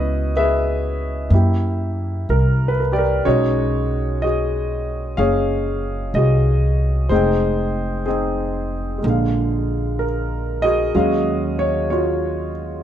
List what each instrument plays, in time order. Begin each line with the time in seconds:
Already playing: upright bass C#2, grand piano B3 C#4 E4 F#4 B4 D#5
0.37 grand piano G#4 B4 E5
1.29 upright bass F#2, grand piano A#3 E4
1.34 grand piano G4
2.29 upright bass C2, grand piano A#4
2.68 grand piano B4
2.80 grand piano A#4
2.92 grand piano G4 D5
2.99 grand piano A#4
3.25 upright bass B1, grand piano G#3 C#4 D#4 F#4 G#4 C#5
4.22 grand piano F#4 G#4 D#5
5.17 upright bass F#1, grand piano C#4 G#4 C#5 F5
6.14 upright bass C2, grand piano F#4 G#4 D#5
7.09 upright bass F1, grand piano G#3 C4 D#4 G#4 C5
7.14 grand piano G5
8.06 grand piano C4 D#4 G#4
8.98 grand piano G#3 A#3
9.04 upright bass A#1, grand piano D3
9.09 grand piano F5
9.99 grand piano A#4
10.62 grand piano F#4 G#4 D#5
10.95 upright bass D#2, grand piano F#3 G#3 C#4 F5
11.59 grand piano C#5
11.90 grand piano F4 F#4 C#5